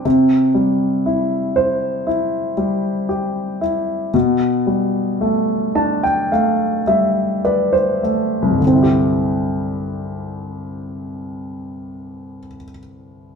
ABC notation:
X:1
M:4/4
L:1/16
Q:1/4=54
K:C
V:1 name="Grand piano"
z16 | z6 a g f2 e2 d c3 | z16 |]
V:2 name="Grand piano"
C,2 G,2 E2 c2 E2 G,2 G2 E2 | B,,2 G,2 A,2 D2 A,2 G,2 B2 A,2 | [C,,G,,D,CEG]16 |]